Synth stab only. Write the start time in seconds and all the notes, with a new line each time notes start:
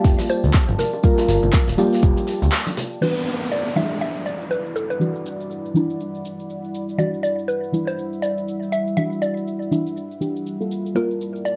Already playing: G3 A#3 F4 G4
1.03 G3 A#3 F4 A#4
1.77 G3 A#3 F4 G4
3.01 E3 G3 D4 F#4
3.76 E3 G3 D4 E4
4.99 E3 G3 D4 F#4
5.74 E3 G3 D4 E4
6.98 E3 G3 D4 F#4
7.72 E3 G3 D4 E4
8.96 E3 G3 D4 F#4
9.71 E3 G3 D4 E4
10.21 E3 G3 D4 G4
10.60 G3 A#3 F4 A4
10.94 G3 A#3 F4 A#4